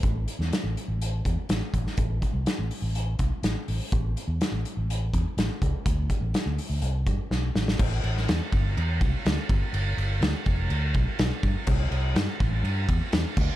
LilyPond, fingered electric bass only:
\new Staff \with { instrumentName = "Fingered electric bass" } { \clef bass \time 4/4 \key c \major \tempo 4 = 124 a,,8 r16 e,16 r16 a,,16 r16 a,,8. e,16 r16 a,,16 r16 a,,16 r16 | a,,8 r16 c,16 r16 a,,16 r16 a,,8. c,16 r16 a,,16 r16 a,,16 r16 | a,,8 r16 e,16 r16 a,,16 r16 a,,8. e,16 r16 a,,16 r16 cis,16 r16 | d,8 r16 a,,16 r16 d,16 r16 d,16 c,8 g,16 r16 b,,8 a,,8 |
a,,8 a,,8 e,16 r16 g,,8 e,8 c,16 r16 d,16 r16 g,,16 r16 | g,,8 g,,8 d,16 r16 f,,8 d,8 b,,16 r16 b,,16 r16 g,16 r16 | c,8 c,8 g,16 r16 a,,8 g,8 e,16 r16 e,16 r16 d,16 r16 | }